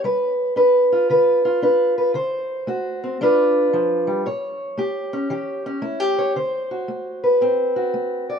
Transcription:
0.04 G3 B4
0.56 D4 B4
0.92 F4
1.10 D3 B4
1.45 F4
1.62 D4 B4
1.98 B4
2.14 D3 C5
2.67 A3 F#4
3.04 C4
3.21 G3 D4 F4 B4
3.73 F3
4.07 G3
4.26 A2 C#5
4.77 A3 G4
5.13 C#4
5.30 E3 G4
5.66 C#4
5.82 A3 E4
6.00 G4
6.19 C#5
6.36 D3 C5
6.71 F#4
6.88 A3
7.24 B4
7.41 A2 C4
7.76 F#4
7.94 A3
8.30 D5

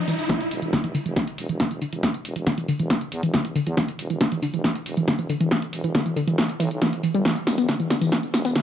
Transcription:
Already playing: riser
0.08 E3, closed hi-hat, tambourine
0.19 closed hi-hat, tambourine
0.29 E3, kick, snare, closed hi-hat
0.41 closed hi-hat
0.51 E1, open hi-hat
0.62 E1 E3, closed hi-hat
0.73 D3, kick, snare, closed hi-hat
0.84 F1 E3, closed hi-hat
0.95 D3, open hi-hat
1.06 F1 E3, closed hi-hat
1.16 E3, kick, snare, closed hi-hat
1.27 closed hi-hat
1.38 E1, open hi-hat
1.49 E1 E3, closed hi-hat
1.60 D3, kick, snare, closed hi-hat
1.71 E1 E3, closed hi-hat
1.82 D3, open hi-hat
1.93 E1 E3, closed hi-hat
2.03 E3, kick, snare, closed hi-hat
2.14 closed hi-hat
2.25 E1, open hi-hat
2.36 E1 E3, closed hi-hat
2.47 D3, kick, snare, closed hi-hat
2.58 E1 E3, closed hi-hat
2.68 D3, open hi-hat
2.80 E1 E3, closed hi-hat
2.90 E3, kick, snare, closed hi-hat
3.01 closed hi-hat
3.12 E2, open hi-hat
3.23 E1 E3, closed hi-hat
3.34 D3, kick, snare, closed hi-hat
3.45 D1 E3, closed hi-hat
3.56 D3, open hi-hat
3.67 E2 E3, closed hi-hat
3.77 E3, kick, snare, closed hi-hat
3.88 closed hi-hat
3.99 E1, open hi-hat
4.10 E1 E3, closed hi-hat
4.21 D3, kick, snare, closed hi-hat
4.32 F1 E3, closed hi-hat
4.42 D3, open hi-hat
4.54 F1 E3, closed hi-hat
4.64 E3, kick, snare, closed hi-hat
4.75 closed hi-hat
4.86 E1, open hi-hat
4.97 E1 E3, closed hi-hat
5.08 D3, kick, snare, closed hi-hat
5.19 E1 E3, closed hi-hat
5.29 D3, open hi-hat
5.40 E1 E3, closed hi-hat
5.51 E3, kick, snare, closed hi-hat
5.62 closed hi-hat
5.73 E1, open hi-hat
5.84 E1 E3, closed hi-hat
5.95 D3, kick, snare, closed hi-hat
6.06 E1 E3, closed hi-hat
6.16 D3, open hi-hat
6.27 E1 E3, closed hi-hat
6.38 E3, kick, snare, closed hi-hat
6.49 closed hi-hat
6.60 B1 E3, open hi-hat
6.71 B1, closed hi-hat
6.81 E3, kick, snare, closed hi-hat
6.93 G1, closed hi-hat
7.03 E3, open hi-hat
7.14 G1 G3, closed hi-hat
7.25 E3, kick, snare, closed hi-hat, tambourine
7.36 closed hi-hat
7.47 E1, snare, open hi-hat, tambourine
7.58 E1 B3, closed hi-hat, tambourine
7.69 D3, kick, snare, closed hi-hat, tambourine
7.80 F1 E3, closed hi-hat
7.90 D3, snare, open hi-hat, tambourine
8.01 F1 E3, closed hi-hat, tambourine
8.12 E3, kick, snare, closed hi-hat, tambourine
8.23 closed hi-hat
8.34 E1, snare, open hi-hat, tambourine
8.45 E1 B3, closed hi-hat, tambourine
8.56 D3, kick, snare, closed hi-hat, tambourine

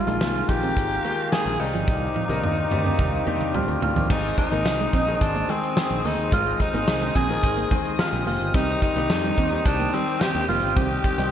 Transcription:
Already playing: D#3 G#3 A#3 F4 F5 A#5
0.07 A#1 D#3 G#3 A#3 F4, closed hi-hat
0.21 C2 A#3, snare
0.35 muted clean electric guitar stroke, closed hi-hat
0.48 A#1 D#3 G#3 A#3 F4 G4, kick, closed hi-hat
0.63 C4, closed hi-hat
0.77 G#1, kick, closed hi-hat
0.91 closed hi-hat
1.04 D#3 G#3 A#3 F4, closed hi-hat
1.19 closed hi-hat
1.32 D#3 G#3 A#3 G#4, snare
1.46 A#1, closed hi-hat
1.60 C2 D#3 C4 D#4 G4 C5 D5 D6, muted clean electric guitar stroke, open hi-hat
1.74 G1 F3, closed hi-hat
1.88 C2, kick, high tom
2.02 muted clean electric guitar stroke
2.16 F3, high tom
2.29 C2 D#3 G3 C4 D4 A#4, high tom
2.43 D#2 A#3, mid tom
2.57 muted clean electric guitar stroke
2.71 D2 D#3 C4 G4 D5, mid tom
2.85 C4, mid tom
2.99 C2, kick, mid tom
3.26 D#3 A#3 C4 D4 G4, mid tom
3.41 mid tom
3.54 D#3 G3 C4 D4 F4 G4, floor tom
3.68 D2
3.82 D2 F4, muted clean electric guitar stroke, floor tom
3.96 D#2 F3, floor tom
4.10 G#1 D#3 G#3 C4 D#4 G#4 C5 D#5 D#6, kick, crash
4.24 closed hi-hat
4.38 D#4, muted clean electric guitar stroke, kick, closed hi-hat
4.51 G#1 D#3 G#3 A#3 C4 A#4, closed hi-hat
4.65 C2, snare, tambourine
4.80 G#3, closed hi-hat
4.93 A#1 C4, kick, closed hi-hat
5.07 D#3 G#3 C4 G#4, closed hi-hat
5.21 G#1 D4, muted clean electric guitar stroke, kick, closed hi-hat
5.35 A#3, closed hi-hat
5.49 D#3 G#3 C4 G#4, closed hi-hat
5.63 closed hi-hat
5.76 D#3 G#3 C4 G#4, snare, tambourine
5.91 A#1, closed hi-hat
6.05 D2 A#3 D#4, open hi-hat
6.18 D#2, closed hi-hat
6.32 G#1 D#3 G#3 C4 F4 G#4, kick, closed hi-hat
6.46 closed hi-hat
6.60 D#4, muted clean electric guitar stroke, kick, closed hi-hat
6.74 G#1 D#3 G#3 A#3 C4 G#4, closed hi-hat
6.88 C2, muted clean electric guitar stroke, snare, tambourine
7.02 G#3, closed hi-hat
7.16 A#1 C4 G#4, kick, closed hi-hat
7.29 D#3 G#3 C4 A#4, closed hi-hat
7.43 G#1, muted clean electric guitar stroke, kick, closed hi-hat
7.57 A#3, closed hi-hat
7.71 D#3 G#3 C4 G#4, kick, closed hi-hat
7.85 closed hi-hat
7.99 D#3 G#3 C4 F4 G4, snare, tambourine
8.13 A#1, closed hi-hat
8.26 F1 A#3 F4, open hi-hat
8.40 G1, closed hi-hat
8.54 C2 D#3 G3 C4 D#4 G4 G5, kick, closed hi-hat
8.68 closed hi-hat
8.82 D#4, muted clean electric guitar stroke, kick, closed hi-hat
8.96 C2 D#3 G3 A#3 C4 G4, closed hi-hat
9.10 F2, snare, tambourine
9.24 G3, closed hi-hat
9.38 D#2 C4, kick, closed hi-hat
9.51 D#3 G3 C4 G4, closed hi-hat
9.66 C2 D4, muted clean electric guitar stroke, kick, closed hi-hat
9.79 A#3, closed hi-hat
9.93 D#3 G3 C4 G4, closed hi-hat
10.07 closed hi-hat
10.21 D#3 G3 C4 G4, snare, tambourine
10.35 D#2, closed hi-hat
10.49 F1 A#3 F4, open hi-hat
10.62 G1, closed hi-hat
10.76 C2 D#3 G3 C4 G4, kick, closed hi-hat
10.91 closed hi-hat
11.04 muted clean electric guitar stroke, kick, closed hi-hat
11.18 C2 D#3 G3 C4 D#4 G4, closed hi-hat

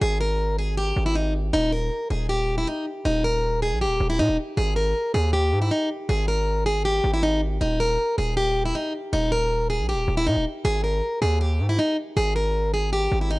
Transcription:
0.02 G#1 G#4
0.21 A#4
0.59 G#4
0.77 G4
0.96 G#1
1.06 E4
1.15 D#4
1.53 D#1 D#4
1.72 A#4
2.10 D#1 G#4
2.29 G4
2.58 E4
2.67 D#4
3.05 D#1 D#4
3.24 A#4
3.62 G#4
3.72 A#1
3.81 G4
3.86 D#1
4.00 D#1
4.10 E4
4.19 A#2 D#4
4.29 D#1
4.57 G#1 G#4
4.76 A#4
5.14 D#2 G#4
5.33 G4
5.52 G#2
5.62 E4
5.71 D#4
6.09 G#1 G#4
6.28 A#4
6.66 G#4
6.85 G4
7.04 G#1
7.14 E4
7.23 D#4
7.61 D#1 D#4
7.80 A#4
8.18 D#1 G#4
8.37 G4
8.65 E4
8.75 D#4
9.13 D#1 D#4
9.32 A#4
9.70 G#4
9.79 A#1
9.89 G4
9.94 D#1
10.08 D#1
10.17 E4
10.27 A#2 D#4
10.36 D#1
10.65 G#1 G#4
10.84 A#4
11.22 D#2 G#4
11.41 G4
11.60 G#2
11.69 E4
11.79 D#4
12.17 G#1 G#4
12.36 A#4
12.74 G#4
12.93 G4
13.12 G#1
13.21 E4
13.31 D#4

